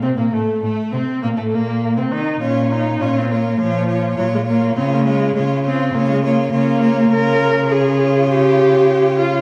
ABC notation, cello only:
X:1
M:4/4
L:1/16
Q:1/4=102
K:Bbm
V:1 name="Cello" clef=bass
C, B,, =A,,2 A,,2 C,2 B,, A,, B,,3 C, E,2 | B,,4 B,,4 B,,4 B,,4 | D,4 D,4 D,4 D,4 | [K:Bbdor] D,16 |]